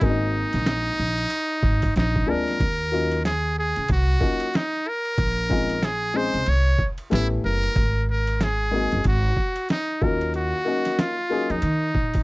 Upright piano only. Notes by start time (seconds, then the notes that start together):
Already playing: D#3
0.01 F#3 G#3 A#3 C4 C#4
0.10 D#4
2.26 F3 G#3 A#3 C4 D4
2.92 F#3 A#3 C#4 D#4 F4
4.20 F#3 A#3 C#4 D#4 F4
5.50 G#3 C4 C#4 D#4 F4
6.14 G#3 C4 C#4 D#4 G#4
7.10 A3 B3 C#4 E4 G4
8.71 G#3 A#3 C4 D#4 F#4
10.01 F#3 A#3 C#4 D#4 F4
10.65 F#3 A#3 C#4 D#4 F#4
11.30 F#3 A#3 C#4 D#4 G#4